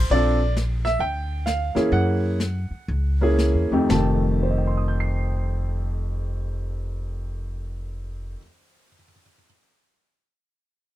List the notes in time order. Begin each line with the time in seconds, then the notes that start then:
0.10 A#1 C4 D4 F4 A4 D5, brush sweep
0.56 snare, hi-hat pedal
0.85 E5, snare
0.99 D2 G5, brush sweep
1.46 F5, snare, hi-hat pedal
1.75 E2 A#3 C#4 E4 G#4, snare
1.92 F#2 F#5, brush sweep
2.40 snare, hi-hat pedal
2.71 muted upright bass stroke
2.88 C#2, brush sweep
3.21 A#3 C#4 E4 G#4
3.38 snare, hi-hat pedal
3.54 E2
3.71 D#2 F2 A3 C4 D#4 G4
3.89 F1 F2 D#3 A3 G4 A5, snare, floor tom
4.43 C5
4.50 D#5
4.58 G5
4.67 C6
4.77 D#6
4.88 G6
5.00 C7